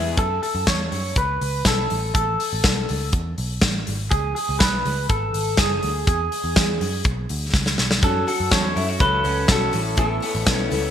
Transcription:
Already playing: E2 G#3 B3 E4 G#4
0.17 F#2 A4, kick, closed hi-hat
0.43 A4, open hi-hat
0.55 F#2
0.67 E2 C#5, kick, snare, closed hi-hat
0.92 F#2, open hi-hat
1.16 C#2 B4, kick, closed hi-hat
1.41 C#2, open hi-hat
1.65 B1 A4, kick, snare, closed hi-hat
1.90 A1, open hi-hat
2.15 A1 A4, kick, closed hi-hat
2.40 open hi-hat
2.53 A1
2.64 B1, kick, snare, closed hi-hat
2.89 C#2, open hi-hat
3.12 E2, kick, closed hi-hat
3.38 B1, open hi-hat
3.61 A1, kick, snare, closed hi-hat
3.87 G#1, open hi-hat
4.11 C#2 G#4, kick, closed hi-hat
4.35 G#4, open hi-hat
4.49 C#2
4.59 B1 B4, kick, snare, closed hi-hat
4.85 C#2, open hi-hat
5.09 G#1 A4, kick, closed hi-hat
5.34 G#1, open hi-hat
5.57 F#1 G#4, kick, snare, closed hi-hat
5.83 D2, open hi-hat
6.07 E2 G#4, kick, closed hi-hat
6.32 open hi-hat
6.44 E2
6.56 E2, kick, snare, closed hi-hat
6.81 F#2, open hi-hat
7.04 B1, kick, closed hi-hat
7.29 D2, open hi-hat
7.54 C#2, kick, snare
7.66 snare
7.78 B1, snare
7.91 snare
8.02 F#2 F#3 C#4 F#4 A4, kick, closed hi-hat
8.27 C#4 F#4 A4, open hi-hat
8.40 F#2
8.51 E2 F#3 C#4 F#4 A4 C#5, kick, snare, closed hi-hat
8.76 F#2 C#4 E4 F#4 A4, open hi-hat
8.89 F#4
8.99 C#2 F#3 C#4 F#4 A4 B4, kick, closed hi-hat
9.24 C#2 C#4 F#4 A4, open hi-hat
9.47 B1 F#3 C#4 F#4 A4, kick, snare, closed hi-hat
9.52 A4
9.71 A1 A2 E4 A4 C#5, open hi-hat
9.96 A1 A2 A3 B3 E4 A4 C#5, kick, closed hi-hat
10.20 B3 E4 A4 C#5, open hi-hat
10.35 A1
10.46 B1 B3 C#4 E4 A4 C#5, kick, snare, closed hi-hat
10.70 C#2 B3 E4 A4 C#5, open hi-hat

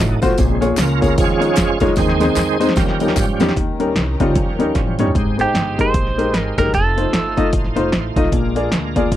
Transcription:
Already playing: F#3 A3 D#4
0.00 A1
0.22 A#1 A3 F4 F#4 C5, kick, closed hi-hat, tambourine
0.30 snare
0.38 A#1 A#2 C#3 G#3 C4, kick, closed hi-hat, tambourine
0.61 A#3 F4 G#4 C#5, closed hi-hat, tambourine
0.77 C#2 C#4 F4, snare, clap, closed hi-hat, tambourine
0.82 A#4
1.01 A#3 F4 G#4 C#5, kick, closed hi-hat, tambourine
1.17 D#2 D#3 F3 G#3 C#4 F4 G#4 C#5, kick, closed hi-hat, tambourine
1.30 snare
1.41 G#3 D#4 F4 C#5, closed hi-hat, tambourine
1.57 F2, kick, snare, clap, closed hi-hat, tambourine
1.80 E2 G#3 D#4 F4 C#5, kick, closed hi-hat, tambourine
1.89 snare
1.96 D#2 D#3 G#3 C4 D#4 G#4 C5, kick, snare, closed hi-hat, tambourine
2.09 snare
2.20 G#3 C4 D#4 C5, snare, closed hi-hat, tambourine
2.36 F2, snare, clap, closed hi-hat, tambourine
2.60 G#3 C4 D#4 C5, closed hi-hat, tambourine
2.69 snare
2.76 D#2 D#3 F3 G3 C#4 G4 A#4, kick, snare, closed hi-hat, tambourine
2.88 snare
3.00 G3 C#4 D#4 A#4, closed hi-hat, tambourine
3.08 snare
3.16 G#2, kick, clap, closed hi-hat, tambourine
3.40 E2 G3 C#4 D#4 G4, snare, closed hi-hat, tambourine
3.49 snare
3.56 D#2 D#3 C#4 D#4 G4 A#4, kick, closed hi-hat
3.80 G3 C#4 D#4 A#4, closed hi-hat
3.95 C2, snare, closed hi-hat
4.20 C#2 F3 G3 C#4 D#4 F4, kick, closed hi-hat
4.35 D#2, kick, closed hi-hat
4.59 G3 C#4 D#4 A#4, closed hi-hat
4.75 A1, kick, snare, closed hi-hat
4.87 high tom
4.99 G3 C#4 D#4 C#5, closed hi-hat, mid tom
5.07 floor tom
5.15 G#1 G#2 G#3 D#4 G4 C5, kick, closed hi-hat
5.38 G#3 D#4 G4 C5, closed hi-hat
5.54 G1, snare, closed hi-hat
5.78 G#3 D#4 G4 A#4 C5, kick, closed hi-hat
5.94 A#1, kick, closed hi-hat
6.07 snare
6.18 G#3 D#4 G4 A#4, closed hi-hat
6.34 G#1, snare, closed hi-hat
6.40 A#4
6.58 F#1 G#3 D#4 G4 A#4, kick, closed hi-hat
6.65 snare
6.73 F1 A3 D#4 F4 A4 C5, kick, closed hi-hat
6.97 A3 D#4 F4 C5, closed hi-hat
7.13 G1, snare, closed hi-hat
7.37 A3 D#4 F4 D#5, kick, closed hi-hat
7.53 A1, kick, closed hi-hat
7.64 snare
7.76 F1 A3 D#4 F4 C5, closed hi-hat
7.92 A1, snare, closed hi-hat
8.16 B1 A3 D#4 F4 D#5, kick, closed hi-hat
8.24 snare
8.32 A#1 A#2 G#3 D4 F4 A4, kick, closed hi-hat
8.37 A#4
8.56 A#3 F4 G#4 D5, closed hi-hat
8.71 D2, snare, closed hi-hat
8.96 A#3 F4 G#4 D5, kick, closed hi-hat
9.11 C2, kick, closed hi-hat

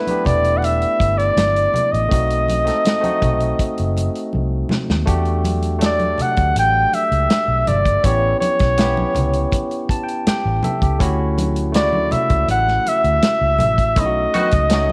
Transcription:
Already playing: A3 B3 D4 E4 B4
0.07 A3 B3 D4 G4, closed hi-hat, high conga
0.25 E1 D5, kick, closed hi-hat, low conga
0.44 closed hi-hat
0.58 F#5
0.62 E5, closed hi-hat, muted conga
0.82 closed hi-hat
1.00 G1, kick, closed hi-hat
1.18 D5, closed hi-hat
1.37 G1, snare, closed hi-hat, muted conga, high conga
1.56 closed hi-hat
1.74 closed hi-hat, high conga, low conga
1.92 A1 D#5, closed hi-hat
2.09 B1 A3 C4 D#4 F#4, kick, closed hi-hat
2.30 closed hi-hat
2.48 closed hi-hat, high conga
2.64 A3 C4 D#4 A4, closed hi-hat
2.68 snare
2.85 snare, closed hi-hat, muted conga
3.01 A3 C4 D#4 F#4, closed hi-hat, high conga
3.22 B1, kick, closed hi-hat, muted conga, low conga
3.40 closed hi-hat
3.59 muted fingered electric bass stroke, kick, closed hi-hat
3.78 F#1, closed hi-hat
3.97 closed hi-hat, muted conga
4.15 closed hi-hat
4.33 C2, high conga
4.69 snare, muted conga, high conga, low conga
4.90 D#2, snare
5.05 E2 A3 D4 F#4 G4, kick, closed hi-hat
5.25 closed hi-hat
5.45 closed hi-hat, muted conga, high conga
5.62 closed hi-hat
5.79 F#3 A3 D4 A4, snare, closed hi-hat
5.85 D5
6.00 closed hi-hat, high conga
6.18 F#5, muted fingered electric bass stroke, closed hi-hat, muted conga, low conga
6.37 D2, kick, closed hi-hat
6.56 A1 G5, closed hi-hat
6.93 E5, closed hi-hat, muted conga
7.11 C#2, closed hi-hat
7.30 snare, closed hi-hat, muted conga
7.48 B1
7.67 G1 D5, closed hi-hat, high conga, low conga
7.85 kick, closed hi-hat
8.03 A1 B3 C#4 E4 G4 C#5, kick, closed hi-hat, muted conga
8.40 C#5, closed hi-hat, muted conga, high conga
8.59 B1, kick, snare, closed hi-hat
8.77 B3 C#4 E4 G4, snare, closed hi-hat
8.97 high conga
9.15 C#2, closed hi-hat, low conga
9.33 closed hi-hat
9.52 kick, closed hi-hat, muted conga
9.71 closed hi-hat
9.89 A5, kick, closed hi-hat
10.03 G5
10.08 closed hi-hat
10.27 G4 G5, muted fingered electric bass stroke, snare, closed hi-hat
10.45 A1
10.63 A4 E5, closed hi-hat, muted conga, high conga, low conga
10.82 C#2 G4, kick, closed hi-hat
10.99 D2 A3 C#4 E4 F#4, kick, closed hi-hat
11.38 closed hi-hat, muted conga, high conga
11.56 closed hi-hat
11.72 C#3 A3 E4 F#4 D5, snare, closed hi-hat
11.93 high conga
12.11 E5, muted fingered electric bass stroke, closed hi-hat, muted conga, low conga
12.29 C#2, kick, closed hi-hat
12.48 A1 F#5, closed hi-hat, muted conga
12.68 snare
12.86 E5, closed hi-hat, muted conga
13.04 D2, closed hi-hat
13.22 snare, closed hi-hat, muted conga
13.41 C#2
13.59 A1, closed hi-hat, high conga, low conga
13.78 kick, closed hi-hat
13.96 B1 A3 C#4 D#4 E4, kick, closed hi-hat, muted conga
14.00 D#5
14.06 F#4
14.34 D#3 B3 F#4, closed hi-hat, muted conga, high conga
14.51 C#2, kick, closed hi-hat
14.70 A3 C#4 D#4, snare, closed hi-hat, muted conga
14.74 F#4

